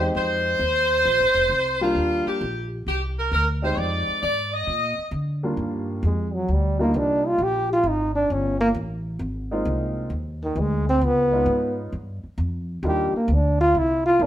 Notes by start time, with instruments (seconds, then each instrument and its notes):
Already playing: upright bass E2, saxophone section C5
0.00 upright piano G#3 C4 D#4 G4
0.15 upright bass F2, saxophone section C5
0.59 upright bass D#2
1.05 upright bass A#1
1.20 upright bass G#1
1.34 upright bass F1
1.50 upright bass C2
1.81 upright piano G3 A#3 D4 F4, saxophone section F4
1.95 upright bass D#2
2.26 saxophone section G4, muted upright bass stroke
2.41 upright bass A#1
2.87 upright bass C2, saxophone section G4
3.19 saxophone section A#4
3.31 upright bass D2, saxophone section A#4
3.62 upright piano G#3 C4 D#4 G4, saxophone section C5
3.74 upright bass F2, saxophone section C#5
3.78 saxophone section D5
4.08 muted upright bass stroke
4.22 upright bass G#2, saxophone section D5
4.53 saxophone section D#5
4.67 upright bass A#2
4.98 muted upright bass stroke
5.11 upright bass D3
5.43 upright piano D#2 G3 A#3 D4 F4
5.57 upright bass G2
6.03 upright bass F2, trombone G#3
6.34 trombone F#3
6.48 upright bass D2
6.53 trombone G3
6.79 upright piano G3 A#3 D4 D#4 F4, trombone A#3
6.94 upright bass C2, trombone D4
7.27 trombone F4
7.38 upright bass A#1
7.43 trombone G4
7.73 trombone F4
7.83 upright bass G#1
7.89 trombone D#4
8.15 trombone D4
8.30 upright bass G1, trombone C#4
8.61 trombone A#3
8.74 upright bass A1
9.19 upright bass G#1
9.51 upright piano G#3 A#3 C4 D#4 F4
9.65 upright bass C2
10.10 upright bass D#2
10.44 trombone D#3
10.56 upright bass D2, trombone G#3
10.89 trombone C4
11.01 upright bass C#2, trombone B3
11.32 upright piano G#3 B3 C#4 D#4 F4
11.46 upright bass G#2
11.92 upright bass G2
12.23 muted upright bass stroke
12.38 upright bass F2
12.83 upright bass D#2, upright piano G3 A#3 D4 D#4 F4
12.88 trombone G4
13.13 trombone A#3, muted upright bass stroke
13.28 upright bass D2
13.33 trombone D4
13.61 trombone F4
13.75 upright bass C2, trombone E4
14.06 trombone F4
14.19 upright bass G1, upright piano A#3 C4 D4 E4 A#4, trombone D4